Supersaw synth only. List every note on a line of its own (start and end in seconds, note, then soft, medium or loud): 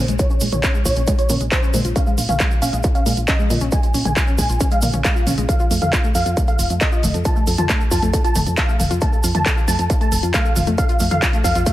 0.19 0.45 C#5 loud
0.52 0.78 C#5 medium
0.86 1.11 C#5 loud
1.19 1.44 C#5 medium
1.52 1.85 C5 medium
1.96 2.21 F5 loud
2.29 2.54 F5 medium
2.62 2.87 F5 loud
2.95 3.20 F5 medium
3.28 3.62 D#5 medium
3.72 3.98 G#5 loud
4.05 4.31 G#5 medium
4.38 4.64 G#5 loud
4.72 4.97 F5 medium
5.05 5.38 F5 medium
5.49 5.74 F5 loud
5.82 6.07 F5 medium
6.15 6.40 F5 loud
6.48 6.73 F5 loud
6.81 7.15 D#5 medium
7.25 7.51 A5 loud
7.58 7.84 A5 medium
7.91 8.17 A5 loud
8.24 8.50 A5 medium
8.58 8.91 F5 medium
9.02 9.27 A5 loud
9.35 9.60 A5 medium
9.68 9.93 A5 loud
10.01 10.26 A5 medium
10.34 10.68 F5 loud
10.78 11.03 F5 loud
11.11 11.36 F5 medium
11.44 11.70 F5 loud